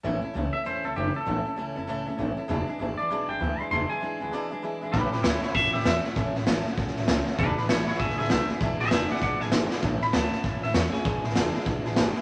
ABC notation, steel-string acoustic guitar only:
X:1
M:4/4
L:1/8
Q:"Swing" 1/4=196
K:A
V:1 name="Steel-string acoustic guitar"
[A,,E,A,CE] [A,CE] [E,A,CE] [A,CE] [A,,E,A,CE] [A,CE] [E,A,CE] [A,CE] | [A,,E,A,CE] [A,CE] [E,A,CE] [A,CE] [A,,E,A,CE] [A,CE] [E,A,CE] [A,CE] | [E,,B,,E,G,DE] [E,G,DE] [E,G,DE] [E,G,DE] [E,,B,,E,G,DE] [E,G,DE] [E,G,DE] [E,G,DE] | [E,,B,,E,G,DE] [E,G,DE] [E,G,DE] [E,G,DE] [E,,B,,E,G,DE] [E,G,DE] [E,G,DE] [E,G,DE] |
[A,,E,A,CE] [A,CE] [A,,E,A,CE] [A,CE] [E,A,CE] [A,CE] [A,,E,A,CE] [A,CE] | [A,,E,A,CE] [A,CE] [A,,E,A,CE] [A,CE] [E,A,CE] [A,CE] [A,,E,A,CE] [A,CE] | [E,,B,,E,G,DE] [E,G,DE] [E,,B,,E,G,DE] [E,G,DE] [E,G,DE] [E,G,DE] [E,,B,,E,G,DE] [E,G,DE] | [E,,B,,E,G,DE] [E,G,DE] [E,,B,,E,G,DE] [E,G,DE] [E,G,DE] [E,G,DE] [E,,B,,E,G,DE] [E,G,DE] |
[A,,E,A,CE] [A,CE] [A,,E,A,CE] [A,CE] [E,A,CE] [A,CE] [A,,E,A,CE] [A,CE] | [E,,B,,E,G,DE] [E,G,DE] [E,,B,,E,G,DE] [E,G,DE] [E,G,DE] [E,G,DE] [E,,B,,E,G,DE] [E,G,DE] |]